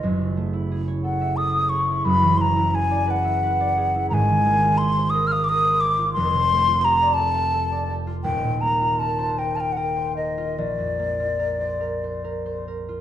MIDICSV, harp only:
0, 0, Header, 1, 2, 480
1, 0, Start_track
1, 0, Tempo, 667408
1, 41, Time_signature, 6, 3, 24, 8
1, 1962, Tempo, 684151
1, 5322, Tempo, 750000
1, 6762, Tempo, 826446
1, 8645, End_track
2, 0, Start_track
2, 0, Title_t, "Harp"
2, 0, Program_c, 0, 46
2, 0, Note_on_c, 0, 68, 45
2, 0, Note_on_c, 0, 73, 45
2, 21, Note_on_c, 0, 30, 59
2, 27, Note_on_c, 0, 42, 56
2, 149, Note_on_c, 0, 49, 43
2, 266, Note_on_c, 0, 57, 50
2, 383, Note_on_c, 0, 64, 49
2, 506, Note_off_c, 0, 68, 0
2, 514, Note_on_c, 0, 68, 55
2, 622, Note_off_c, 0, 73, 0
2, 630, Note_on_c, 0, 73, 54
2, 749, Note_on_c, 0, 69, 53
2, 872, Note_on_c, 0, 76, 53
2, 979, Note_off_c, 0, 69, 0
2, 988, Note_on_c, 0, 69, 56
2, 1103, Note_off_c, 0, 73, 0
2, 1112, Note_on_c, 0, 73, 51
2, 1226, Note_off_c, 0, 68, 0
2, 1235, Note_on_c, 0, 68, 49
2, 1350, Note_off_c, 0, 64, 0
2, 1358, Note_on_c, 0, 64, 52
2, 1464, Note_off_c, 0, 30, 0
2, 1473, Note_on_c, 0, 30, 63
2, 1474, Note_off_c, 0, 42, 0
2, 1482, Note_on_c, 0, 42, 64
2, 1492, Note_off_c, 0, 49, 0
2, 1492, Note_off_c, 0, 57, 0
2, 1495, Note_off_c, 0, 69, 0
2, 1497, Note_off_c, 0, 73, 0
2, 1599, Note_on_c, 0, 52, 49
2, 1724, Note_on_c, 0, 59, 53
2, 1835, Note_off_c, 0, 64, 0
2, 1843, Note_on_c, 0, 64, 57
2, 1958, Note_off_c, 0, 68, 0
2, 1967, Note_on_c, 0, 68, 55
2, 2086, Note_on_c, 0, 74, 56
2, 2204, Note_on_c, 0, 71, 63
2, 2317, Note_off_c, 0, 76, 0
2, 2325, Note_on_c, 0, 76, 54
2, 2445, Note_off_c, 0, 71, 0
2, 2454, Note_on_c, 0, 71, 62
2, 2567, Note_off_c, 0, 74, 0
2, 2576, Note_on_c, 0, 74, 58
2, 2686, Note_off_c, 0, 68, 0
2, 2694, Note_on_c, 0, 68, 57
2, 2813, Note_off_c, 0, 64, 0
2, 2822, Note_on_c, 0, 64, 54
2, 2929, Note_on_c, 0, 32, 70
2, 2942, Note_on_c, 0, 44, 76
2, 2945, Note_off_c, 0, 30, 0
2, 2947, Note_off_c, 0, 52, 0
2, 2948, Note_off_c, 0, 76, 0
2, 2949, Note_off_c, 0, 42, 0
2, 2949, Note_off_c, 0, 59, 0
2, 2950, Note_off_c, 0, 74, 0
2, 2951, Note_off_c, 0, 71, 0
2, 2953, Note_off_c, 0, 64, 0
2, 3057, Note_on_c, 0, 51, 53
2, 3176, Note_on_c, 0, 58, 61
2, 3302, Note_on_c, 0, 65, 61
2, 3409, Note_off_c, 0, 68, 0
2, 3418, Note_on_c, 0, 68, 63
2, 3541, Note_on_c, 0, 72, 61
2, 3658, Note_on_c, 0, 70, 64
2, 3778, Note_on_c, 0, 77, 65
2, 3891, Note_off_c, 0, 70, 0
2, 3899, Note_on_c, 0, 70, 61
2, 4002, Note_off_c, 0, 72, 0
2, 4010, Note_on_c, 0, 72, 61
2, 4122, Note_off_c, 0, 68, 0
2, 4130, Note_on_c, 0, 68, 56
2, 4240, Note_off_c, 0, 65, 0
2, 4248, Note_on_c, 0, 65, 60
2, 4372, Note_on_c, 0, 29, 74
2, 4377, Note_on_c, 0, 41, 71
2, 4380, Note_off_c, 0, 32, 0
2, 4384, Note_off_c, 0, 51, 0
2, 4384, Note_off_c, 0, 58, 0
2, 4384, Note_off_c, 0, 68, 0
2, 4386, Note_off_c, 0, 44, 0
2, 4390, Note_off_c, 0, 70, 0
2, 4498, Note_on_c, 0, 48, 52
2, 4621, Note_on_c, 0, 57, 60
2, 4723, Note_off_c, 0, 65, 0
2, 4731, Note_on_c, 0, 65, 65
2, 4851, Note_on_c, 0, 67, 62
2, 4970, Note_on_c, 0, 74, 63
2, 5095, Note_on_c, 0, 69, 65
2, 5197, Note_off_c, 0, 77, 0
2, 5205, Note_on_c, 0, 77, 57
2, 5327, Note_off_c, 0, 69, 0
2, 5335, Note_on_c, 0, 69, 67
2, 5441, Note_off_c, 0, 74, 0
2, 5449, Note_on_c, 0, 74, 57
2, 5559, Note_off_c, 0, 67, 0
2, 5567, Note_on_c, 0, 67, 55
2, 5668, Note_off_c, 0, 65, 0
2, 5676, Note_on_c, 0, 65, 60
2, 5783, Note_on_c, 0, 27, 63
2, 5788, Note_on_c, 0, 39, 73
2, 5817, Note_off_c, 0, 29, 0
2, 5817, Note_off_c, 0, 74, 0
2, 5818, Note_off_c, 0, 69, 0
2, 5819, Note_off_c, 0, 41, 0
2, 5820, Note_off_c, 0, 48, 0
2, 5823, Note_off_c, 0, 57, 0
2, 5913, Note_on_c, 0, 46, 53
2, 6031, Note_on_c, 0, 58, 58
2, 6145, Note_off_c, 0, 65, 0
2, 6153, Note_on_c, 0, 65, 59
2, 6274, Note_on_c, 0, 70, 57
2, 6382, Note_off_c, 0, 72, 0
2, 6390, Note_on_c, 0, 72, 56
2, 6509, Note_off_c, 0, 70, 0
2, 6517, Note_on_c, 0, 70, 61
2, 6626, Note_off_c, 0, 77, 0
2, 6633, Note_on_c, 0, 77, 54
2, 6752, Note_off_c, 0, 70, 0
2, 6760, Note_on_c, 0, 70, 55
2, 6871, Note_off_c, 0, 72, 0
2, 6878, Note_on_c, 0, 72, 50
2, 6987, Note_off_c, 0, 70, 0
2, 6994, Note_on_c, 0, 70, 46
2, 7109, Note_off_c, 0, 65, 0
2, 7116, Note_on_c, 0, 65, 51
2, 7235, Note_on_c, 0, 34, 59
2, 7247, Note_off_c, 0, 27, 0
2, 7249, Note_off_c, 0, 39, 0
2, 7252, Note_off_c, 0, 46, 0
2, 7257, Note_off_c, 0, 67, 0
2, 7351, Note_on_c, 0, 41, 45
2, 7467, Note_off_c, 0, 58, 0
2, 7474, Note_on_c, 0, 58, 53
2, 7586, Note_off_c, 0, 65, 0
2, 7593, Note_on_c, 0, 65, 49
2, 7699, Note_off_c, 0, 70, 0
2, 7706, Note_on_c, 0, 70, 48
2, 7824, Note_off_c, 0, 72, 0
2, 7831, Note_on_c, 0, 72, 47
2, 7939, Note_off_c, 0, 70, 0
2, 7946, Note_on_c, 0, 70, 51
2, 8073, Note_off_c, 0, 72, 0
2, 8080, Note_on_c, 0, 72, 45
2, 8193, Note_off_c, 0, 70, 0
2, 8200, Note_on_c, 0, 70, 54
2, 8318, Note_off_c, 0, 72, 0
2, 8325, Note_on_c, 0, 72, 48
2, 8445, Note_off_c, 0, 70, 0
2, 8452, Note_on_c, 0, 70, 43
2, 8566, Note_off_c, 0, 65, 0
2, 8573, Note_on_c, 0, 65, 49
2, 8645, Note_off_c, 0, 34, 0
2, 8645, Note_off_c, 0, 41, 0
2, 8645, Note_off_c, 0, 58, 0
2, 8645, Note_off_c, 0, 65, 0
2, 8645, Note_off_c, 0, 70, 0
2, 8645, Note_off_c, 0, 72, 0
2, 8645, Note_off_c, 0, 77, 0
2, 8645, End_track
0, 0, End_of_file